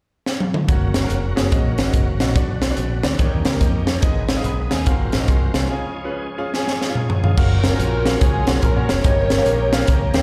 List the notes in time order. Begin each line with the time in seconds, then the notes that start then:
0.26 snare
0.40 high tom
0.54 mid tom
0.68 F#1 C#3 F#3 A#3 C#4 F#4 C#5, kick, closed hi-hat
0.94 snare, closed hi-hat
1.03 A#3 C#4 F#4 A#4
1.10 F1, closed hi-hat
1.36 F#1 A#3 C#4 F#4 G#4, snare, closed hi-hat
1.52 A#1 A#3 C#4 F#4 D#5, kick, closed hi-hat
1.78 G#1, snare, closed hi-hat
1.85 A#3 C#4 F#4 D#5
1.93 F#1, kick, closed hi-hat
2.20 A#1 A#3 C#4 F#4 D#5, snare, closed hi-hat
2.35 B1 B2 D3 F#3 B3 D4 F#4 D5, kick, closed hi-hat
2.62 snare, closed hi-hat
2.70 B3 D4 F#4 D5
2.77 A#1, closed hi-hat
3.03 D2 B3 D4 F#4 D5, snare, closed hi-hat
3.19 D#2 D#3 A#3 C#4 D#4 G4 C#5, kick, closed hi-hat
3.45 C#2, snare, closed hi-hat
3.52 A#3 D#4 G4 A#4
3.61 F2 D#5, kick, closed hi-hat
3.87 A#4 C#5, snare, closed hi-hat
4.02 G#1 G#2 G#3 B3 D#4 G#4 D#5, kick, closed hi-hat
4.29 snare, closed hi-hat
4.37 B3 D#4 G#4 F5
4.44 B1 B5 D#6, closed hi-hat
4.71 D#2 F5 G#5, snare, closed hi-hat
4.86 G#1 G#2 A#3 C4 F4 F#4 A#4 F5, kick, closed hi-hat
5.12 A#1, snare, closed hi-hat
5.19 C4 F#4 A#4 D#5
5.28 C2 G#5 C6, kick, closed hi-hat
5.54 C2 F5 G#5, snare, closed hi-hat
5.70 C#3 F3 G#3 C#4 F4 G#4 F5
6.04 C#4 F4 G#4 B4
6.38 C#4 F4 G#4 F5
6.54 C#4 F4 G#4 G#5, snare
6.68 snare
6.82 snare
6.89 C#4 F4 G#4 F5
6.95 mid tom
7.10 floor tom
7.23 C#4 F4 G#4 F5, floor tom
7.37 F#1 F#3 A#3 C#4 F4 F#4 A#4 F5, kick, crash
7.64 C#4 F4 A#4, snare, closed hi-hat
7.71 C#4 F#4 A#4 C#5
7.79 A#1, closed hi-hat
8.06 C#4 F#4 A#4 F5, snare, closed hi-hat
8.21 C#2 C#4 F4 G#4, kick, closed hi-hat
8.47 B1 C#4 F#4 A#4 G#5, snare, closed hi-hat
8.62 A#1 A#4, kick, closed hi-hat
8.76 C#4 F#4 A#4 C#5
8.89 F1 A#4 C#5, snare, closed hi-hat
9.04 G1 G2 D#3 C#4 G4 A#4 D#5, kick, closed hi-hat
9.30 snare, closed hi-hat
9.38 C#4 G4 A#4 F5
9.46 A#1, closed hi-hat
9.73 C#4 G4 A#4 F5 G5, snare, closed hi-hat
9.87 C#2 A#5, kick, closed hi-hat
10.14 D#2 C#4 G4 A#4 F5 G5, snare, closed hi-hat